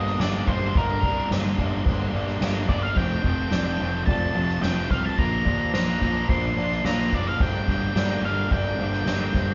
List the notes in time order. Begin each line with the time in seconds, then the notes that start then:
Already playing: G1 G2 D3 G3 A#3 D4 G4 A#4 C5 D#5 F5 A#5
0.06 snare
0.18 G1 G2 D3 G3 A#3 D4 D5, snare, crash
0.46 G1 G2 D3 G3 A#3 D4 C5, kick, crash
0.74 G1 G2 D3 G3 A#3 D4 A#4 C6, kick, crash
1.02 C2 G2 D3 G3 A#3 D4 D5, kick, crash
1.30 G1 G2 D3 G3 A#3 D4 C5, snare, crash
1.58 G1 G2 D3 G3 A#3 D4, kick, crash
1.86 G1 G2 D3 G3 A#3 D4 C5, kick, crash
2.13 G1 G2 D3 G3 A#3 D4 D5, crash
2.28 snare
2.41 G1 G2 D3 G3 A#3 D4 F5, snare, crash
2.69 G1 G2 D3 G3 A#3 D4 D5, kick, crash
2.83 F5
2.96 F1 F2 C3 F3 A3 C4 F4 A4 C5 G5 A5, kick, crash
3.24 F1 F2 C3 F3 A3 C4, kick, crash
3.51 F1 F2 C3 F3 A3 C4 D5, snare, crash
3.78 F1 F2 C3 F3 A3 C4 D#5, crash
4.06 F1 F2 C3 F3 A3 C4 D5 A5, kick, crash
4.35 F1 F2 C3 F3 A3 C4 C5, crash
4.48 snare
4.62 F1 F2 C3 F3 A3 C4 G5, snare, crash
4.90 C2 F2 C3 F3 A3 C4 C5 F5, kick, snare, crash
5.05 A5
5.18 A#1 A#2 F3 A#3 D4 C5 D5 A#5, kick, crash
5.45 D#2 A#2 F3 A#3 D4 D5, kick, crash
5.74 A#1 A#2 F3 A#3 D4 C5 A#5, snare, crash
6.01 A#1 A#2 F3 A#3 C4 D4, kick, crash
6.29 A#1 A#2 D3 F3 A#3 D4 C5 C6, kick, crash
6.56 A#1 A#2 F3 A#3 D4 D5, crash
6.71 snare
6.84 A#1 A#2 D3 F3 A#3 D4 F5 A#5, snare, crash
7.12 F#1 A#2 F3 A#3 C4 D4 D5, kick, crash
7.27 F5
7.39 G1 G2 D3 G3 A#3 D4 G4 A#4 C5 G5, kick, crash
7.68 G1 G2 D3 G3 A#3 D4, kick, crash
7.95 G1 G2 D3 G3 A#3 D4 D5, snare, crash
8.22 G1 G2 D3 G3 A#3 D4 D#5 F5, crash
8.50 G1 G2 D3 G3 A#3 D4 D5 G5, kick, crash
8.79 G1 G2 D3 G3 A#3 D4 C5, crash
8.93 snare
9.06 G1 G2 D3 G3 A#3 D4, snare, crash
9.34 G1 G2 D3 G3 A#3 D4 C5, kick, snare, crash